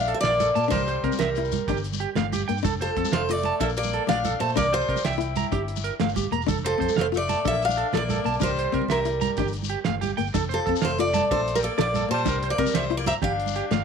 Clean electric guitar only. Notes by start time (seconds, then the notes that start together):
0.08 A4
0.23 D5
0.40 A4
0.55 A5
0.72 A#4
0.88 C5
1.04 A#4
1.20 E5
1.68 G4
2.00 G4
2.17 F5
2.33 G4
2.48 G5
2.64 A4
2.81 C5
2.98 A4
3.13 F5
3.45 A5
3.61 A4
3.94 A4
4.09 D5
4.25 A4
4.41 A5
4.57 A#4
4.73 C5
4.89 A#4
5.05 E5
5.37 A#5
5.53 G4
5.84 A#4
6.01 F5
6.16 G4
6.32 A#5
6.48 A4
6.65 C5
6.80 C5
6.97 F5
7.29 A5
7.45 A4
7.77 A4
7.93 D5
8.10 A4
8.25 A5
8.42 A#4
8.59 C5
8.74 A#4
8.90 E5
9.21 A#5
9.38 G4
9.70 G4
9.85 F5
10.01 G4
10.17 G5
10.34 A4
10.49 C5
10.66 A4
10.82 F5
11.14 A5
11.31 A4
11.63 A4
11.78 D5
11.96 A4
12.12 A5
12.28 A#4
12.44 C5
12.60 A#4
12.75 E5
13.07 A#5
13.22 G4
13.56 G4
13.72 F5